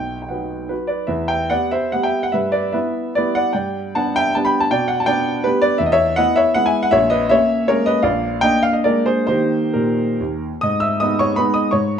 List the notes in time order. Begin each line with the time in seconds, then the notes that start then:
Already playing: B1 G5
0.22 G5
0.29 F#3 D#4 B4 F#5
0.69 F#4 B4
0.87 B4 D5
1.07 E2 B4 E5
1.28 E5 G5
1.50 B3 G4 D5 F#5
1.71 C5 E5
1.92 G3 B3 G4 F#5
2.03 E5 G5
2.23 F#5
2.32 G2 B4 E5
2.52 B4 D5
2.72 B3 E4 B4 E5
3.15 G3 B3 E4 B4 D5
3.35 D5 F#5
3.53 G2 D5 G5
3.95 B3 D4 F#5 A5
4.16 E5 G5
4.35 G3 B3 D4 A5
4.45 G5 B5
4.60 A5
4.71 B2 D5 G5
4.88 F#5
5.00 A5
5.06 B3 D4 D5 G5
5.44 G3 B3 D4 G4 B4
5.62 B4 D5
5.78 E2 E5
5.86 D#5
5.92 C#5 E5
6.16 B3 E4 D#5 F#5
6.36 C#5 E5
6.54 G#3 B3 E4 F#5
6.66 E5 G#5
6.83 F#5
6.91 A#1 C#5 E5
7.10 B4 D#5
7.29 A#3 C#4 C#5 E5
7.68 G#3 A#3 C#4 A#4 C#5
7.86 B4 D#5
8.03 A#1 D5 F5
8.41 A#3 D4 D#5 G5
8.63 F5
8.73 D#5
8.84 G#3 A#3 D4 A#4 D5
9.06 G#4 C5
9.27 D#3 A#3 D#4 G4 C5
9.73 A#2 G4 A#4
10.20 D#2
10.61 G#2 D#5 D#6
10.80 E5 E6
11.00 G#3 B3 D#4 D#5 D#6
11.19 C#5 C#6
11.36 G#3 B3 D#4 B4 B5
11.54 D#5 D#6
11.71 G#2 C#5 C#6